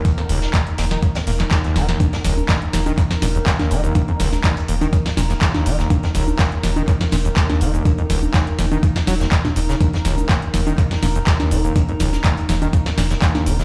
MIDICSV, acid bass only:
0, 0, Header, 1, 2, 480
1, 0, Start_track
1, 0, Tempo, 487805
1, 49, Time_signature, 4, 2, 24, 8
1, 13426, End_track
2, 0, Start_track
2, 0, Title_t, "Acid bass"
2, 0, Program_c, 0, 38
2, 49, Note_on_c, 0, 39, 81
2, 119, Note_off_c, 0, 39, 0
2, 175, Note_on_c, 0, 41, 104
2, 213, Note_off_c, 0, 41, 0
2, 290, Note_on_c, 0, 37, 100
2, 394, Note_off_c, 0, 37, 0
2, 528, Note_on_c, 0, 39, 83
2, 633, Note_off_c, 0, 39, 0
2, 769, Note_on_c, 0, 39, 95
2, 839, Note_off_c, 0, 39, 0
2, 896, Note_on_c, 0, 51, 79
2, 958, Note_off_c, 0, 51, 0
2, 1010, Note_on_c, 0, 49, 86
2, 1051, Note_off_c, 0, 49, 0
2, 1136, Note_on_c, 0, 41, 100
2, 1173, Note_off_c, 0, 41, 0
2, 1249, Note_on_c, 0, 46, 83
2, 1291, Note_off_c, 0, 46, 0
2, 1377, Note_on_c, 0, 39, 99
2, 1414, Note_off_c, 0, 39, 0
2, 1489, Note_on_c, 0, 39, 86
2, 1594, Note_off_c, 0, 39, 0
2, 1617, Note_on_c, 0, 39, 110
2, 1731, Note_on_c, 0, 51, 75
2, 1746, Note_off_c, 0, 39, 0
2, 1835, Note_off_c, 0, 51, 0
2, 1857, Note_on_c, 0, 39, 101
2, 1950, Note_off_c, 0, 39, 0
2, 1970, Note_on_c, 0, 39, 83
2, 2039, Note_off_c, 0, 39, 0
2, 2096, Note_on_c, 0, 41, 100
2, 2134, Note_off_c, 0, 41, 0
2, 2210, Note_on_c, 0, 37, 102
2, 2314, Note_off_c, 0, 37, 0
2, 2450, Note_on_c, 0, 39, 90
2, 2554, Note_off_c, 0, 39, 0
2, 2689, Note_on_c, 0, 39, 106
2, 2759, Note_off_c, 0, 39, 0
2, 2816, Note_on_c, 0, 51, 77
2, 2878, Note_off_c, 0, 51, 0
2, 2929, Note_on_c, 0, 49, 85
2, 2971, Note_off_c, 0, 49, 0
2, 3056, Note_on_c, 0, 41, 106
2, 3093, Note_off_c, 0, 41, 0
2, 3169, Note_on_c, 0, 46, 82
2, 3211, Note_off_c, 0, 46, 0
2, 3296, Note_on_c, 0, 39, 101
2, 3333, Note_off_c, 0, 39, 0
2, 3410, Note_on_c, 0, 39, 88
2, 3514, Note_off_c, 0, 39, 0
2, 3536, Note_on_c, 0, 39, 105
2, 3649, Note_on_c, 0, 51, 81
2, 3664, Note_off_c, 0, 39, 0
2, 3754, Note_off_c, 0, 51, 0
2, 3775, Note_on_c, 0, 39, 106
2, 3869, Note_off_c, 0, 39, 0
2, 3889, Note_on_c, 0, 39, 83
2, 3959, Note_off_c, 0, 39, 0
2, 4015, Note_on_c, 0, 41, 110
2, 4053, Note_off_c, 0, 41, 0
2, 4129, Note_on_c, 0, 37, 104
2, 4234, Note_off_c, 0, 37, 0
2, 4369, Note_on_c, 0, 39, 83
2, 4473, Note_off_c, 0, 39, 0
2, 4608, Note_on_c, 0, 39, 100
2, 4678, Note_off_c, 0, 39, 0
2, 4735, Note_on_c, 0, 51, 78
2, 4798, Note_off_c, 0, 51, 0
2, 4848, Note_on_c, 0, 49, 89
2, 4891, Note_off_c, 0, 49, 0
2, 4975, Note_on_c, 0, 41, 105
2, 5013, Note_off_c, 0, 41, 0
2, 5088, Note_on_c, 0, 46, 78
2, 5130, Note_off_c, 0, 46, 0
2, 5215, Note_on_c, 0, 39, 101
2, 5253, Note_off_c, 0, 39, 0
2, 5329, Note_on_c, 0, 39, 92
2, 5433, Note_off_c, 0, 39, 0
2, 5455, Note_on_c, 0, 39, 101
2, 5569, Note_on_c, 0, 51, 80
2, 5584, Note_off_c, 0, 39, 0
2, 5674, Note_off_c, 0, 51, 0
2, 5695, Note_on_c, 0, 39, 105
2, 5789, Note_off_c, 0, 39, 0
2, 5808, Note_on_c, 0, 39, 78
2, 5878, Note_off_c, 0, 39, 0
2, 5935, Note_on_c, 0, 41, 106
2, 5973, Note_off_c, 0, 41, 0
2, 6048, Note_on_c, 0, 37, 106
2, 6153, Note_off_c, 0, 37, 0
2, 6289, Note_on_c, 0, 39, 86
2, 6393, Note_off_c, 0, 39, 0
2, 6528, Note_on_c, 0, 39, 105
2, 6598, Note_off_c, 0, 39, 0
2, 6655, Note_on_c, 0, 51, 80
2, 6718, Note_off_c, 0, 51, 0
2, 6768, Note_on_c, 0, 49, 92
2, 6810, Note_off_c, 0, 49, 0
2, 6895, Note_on_c, 0, 41, 104
2, 6933, Note_off_c, 0, 41, 0
2, 7008, Note_on_c, 0, 46, 81
2, 7050, Note_off_c, 0, 46, 0
2, 7135, Note_on_c, 0, 39, 99
2, 7173, Note_off_c, 0, 39, 0
2, 7248, Note_on_c, 0, 39, 90
2, 7353, Note_off_c, 0, 39, 0
2, 7375, Note_on_c, 0, 39, 106
2, 7489, Note_on_c, 0, 51, 75
2, 7503, Note_off_c, 0, 39, 0
2, 7593, Note_off_c, 0, 51, 0
2, 7614, Note_on_c, 0, 39, 105
2, 7708, Note_off_c, 0, 39, 0
2, 7728, Note_on_c, 0, 39, 87
2, 7798, Note_off_c, 0, 39, 0
2, 7855, Note_on_c, 0, 41, 106
2, 7893, Note_off_c, 0, 41, 0
2, 7969, Note_on_c, 0, 37, 103
2, 8074, Note_off_c, 0, 37, 0
2, 8208, Note_on_c, 0, 39, 84
2, 8313, Note_off_c, 0, 39, 0
2, 8449, Note_on_c, 0, 39, 104
2, 8519, Note_off_c, 0, 39, 0
2, 8575, Note_on_c, 0, 51, 75
2, 8638, Note_off_c, 0, 51, 0
2, 8689, Note_on_c, 0, 49, 86
2, 8731, Note_off_c, 0, 49, 0
2, 8816, Note_on_c, 0, 41, 103
2, 8853, Note_off_c, 0, 41, 0
2, 8930, Note_on_c, 0, 54, 108
2, 8999, Note_off_c, 0, 54, 0
2, 9056, Note_on_c, 0, 39, 102
2, 9118, Note_off_c, 0, 39, 0
2, 9169, Note_on_c, 0, 39, 113
2, 9211, Note_off_c, 0, 39, 0
2, 9296, Note_on_c, 0, 46, 103
2, 9333, Note_off_c, 0, 46, 0
2, 9409, Note_on_c, 0, 41, 77
2, 9451, Note_off_c, 0, 41, 0
2, 9536, Note_on_c, 0, 49, 80
2, 9598, Note_off_c, 0, 49, 0
2, 9649, Note_on_c, 0, 39, 81
2, 9719, Note_off_c, 0, 39, 0
2, 9776, Note_on_c, 0, 41, 104
2, 9813, Note_off_c, 0, 41, 0
2, 9890, Note_on_c, 0, 37, 101
2, 9994, Note_off_c, 0, 37, 0
2, 10129, Note_on_c, 0, 39, 82
2, 10234, Note_off_c, 0, 39, 0
2, 10370, Note_on_c, 0, 39, 104
2, 10439, Note_off_c, 0, 39, 0
2, 10496, Note_on_c, 0, 51, 76
2, 10558, Note_off_c, 0, 51, 0
2, 10610, Note_on_c, 0, 49, 85
2, 10651, Note_off_c, 0, 49, 0
2, 10737, Note_on_c, 0, 41, 108
2, 10774, Note_off_c, 0, 41, 0
2, 10851, Note_on_c, 0, 46, 78
2, 10892, Note_off_c, 0, 46, 0
2, 10977, Note_on_c, 0, 39, 106
2, 11014, Note_off_c, 0, 39, 0
2, 11090, Note_on_c, 0, 39, 88
2, 11194, Note_off_c, 0, 39, 0
2, 11217, Note_on_c, 0, 39, 104
2, 11331, Note_on_c, 0, 51, 74
2, 11346, Note_off_c, 0, 39, 0
2, 11434, Note_off_c, 0, 51, 0
2, 11457, Note_on_c, 0, 39, 100
2, 11550, Note_off_c, 0, 39, 0
2, 11570, Note_on_c, 0, 39, 82
2, 11639, Note_off_c, 0, 39, 0
2, 11697, Note_on_c, 0, 41, 109
2, 11734, Note_off_c, 0, 41, 0
2, 11810, Note_on_c, 0, 37, 102
2, 11914, Note_off_c, 0, 37, 0
2, 12050, Note_on_c, 0, 39, 85
2, 12154, Note_off_c, 0, 39, 0
2, 12290, Note_on_c, 0, 39, 102
2, 12359, Note_off_c, 0, 39, 0
2, 12416, Note_on_c, 0, 51, 77
2, 12478, Note_off_c, 0, 51, 0
2, 12530, Note_on_c, 0, 49, 86
2, 12571, Note_off_c, 0, 49, 0
2, 12656, Note_on_c, 0, 41, 99
2, 12693, Note_off_c, 0, 41, 0
2, 12769, Note_on_c, 0, 46, 80
2, 12811, Note_off_c, 0, 46, 0
2, 12896, Note_on_c, 0, 39, 98
2, 12933, Note_off_c, 0, 39, 0
2, 13009, Note_on_c, 0, 39, 89
2, 13114, Note_off_c, 0, 39, 0
2, 13136, Note_on_c, 0, 39, 109
2, 13249, Note_on_c, 0, 51, 78
2, 13264, Note_off_c, 0, 39, 0
2, 13354, Note_off_c, 0, 51, 0
2, 13376, Note_on_c, 0, 39, 109
2, 13426, Note_off_c, 0, 39, 0
2, 13426, End_track
0, 0, End_of_file